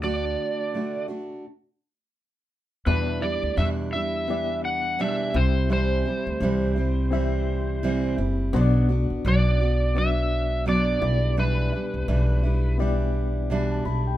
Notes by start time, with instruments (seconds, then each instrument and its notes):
Already playing: upright bass D2, reed electric piano A3 D4 F#4 D5
0.02 steel-string acoustic guitar D3 A3 D4 F#4, electric slide guitar D5
0.74 steel-string acoustic guitar D3 A3 D4 F#4
1.08 steel-string acoustic guitar A3 D4 F#4
2.86 steel-string acoustic guitar E2 B2 E3 G3 D4 E4, upright bass E2, reed electric piano B3 E4 G4 D5, electric slide guitar B4
3.22 steel-string acoustic guitar E3 G3 D4 E4, electric slide guitar D5
3.43 upright bass D2
3.57 steel-string acoustic guitar E2 B2 E3 G3 D4 E4, upright bass E2, electric slide guitar E5
3.93 steel-string acoustic guitar E3 G3 D4 E4, electric slide guitar E5
4.27 steel-string acoustic guitar E3 G3 D4 E4, reed electric piano B3 E4 G4 D5
4.65 electric slide guitar F#5
4.99 steel-string acoustic guitar E2 B2 E3 G3 D4 E4, electric slide guitar E5
5.34 upright bass C2, steel-string acoustic guitar G3 C4 E4, reed electric piano C4 E4 G4 E5, electric slide guitar C5
5.69 steel-string acoustic guitar C3 E3 G3 C4 E4, electric slide guitar C5
6.05 steel-string acoustic guitar G3 C4 E4
6.26 upright bass D2
6.40 upright bass C2, steel-string acoustic guitar C3 E3 G3 C4 E4
6.76 steel-string acoustic guitar G3 C4 E4
7.11 steel-string acoustic guitar E3 G3 C4 E4, reed electric piano C4 E4 G4 E5
7.83 steel-string acoustic guitar C3 E3 G3 C4 E4
8.18 upright bass F#1, steel-string acoustic guitar G3 C4 E4
8.53 upright bass B1, steel-string acoustic guitar B2 F#3 B3 D4 F#4, reed electric piano B3 D4 F#4 C5
8.61 reed electric piano D5
8.89 steel-string acoustic guitar B3 D4 F#4
9.10 upright bass A1
9.25 upright bass B1, steel-string acoustic guitar B2 F#3 B3 D4 F#4, electric slide guitar D5
9.60 steel-string acoustic guitar B3 D4 F#4
9.95 steel-string acoustic guitar F#3 B3 D4 F#4, reed electric piano B3 D4 F#4 D5, electric slide guitar E5
10.66 steel-string acoustic guitar B2 F#3 B3 D4 F#4, electric slide guitar D5
11.00 upright bass B1, reed electric piano B3 E4 G4 D5, steel-string acoustic guitar D4 E4
11.05 steel-string acoustic guitar G3
11.37 steel-string acoustic guitar B2 E3 G3 D4 E4, electric slide guitar B4
11.73 steel-string acoustic guitar G3 D4 E4
11.94 upright bass C2
12.08 upright bass B1, steel-string acoustic guitar B2 E3 G3 D4 E4
12.43 steel-string acoustic guitar G3 D4 E4
12.78 steel-string acoustic guitar E3 G3 D4 E4, reed electric piano B3 E4 G4 D5
13.50 steel-string acoustic guitar B2 E3 G3 D4 E4
13.71 reed electric piano A5
13.85 upright bass B1, steel-string acoustic guitar G3 D4 E4, reed electric piano B5
14.07 reed electric piano G5